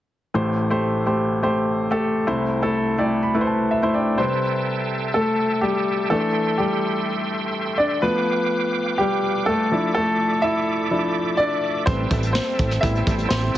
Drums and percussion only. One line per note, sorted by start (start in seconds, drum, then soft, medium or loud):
11.87 kick loud
11.87 closed hi-hat medium
12.11 kick medium
12.11 closed hi-hat medium
12.23 closed hi-hat soft
12.35 snare medium
12.59 kick medium
12.59 closed hi-hat medium
12.71 snare soft
12.71 closed hi-hat soft
12.83 kick medium
12.83 closed hi-hat medium
12.95 closed hi-hat soft
13.07 kick medium
13.07 closed hi-hat medium
13.18 closed hi-hat soft
13.30 snare medium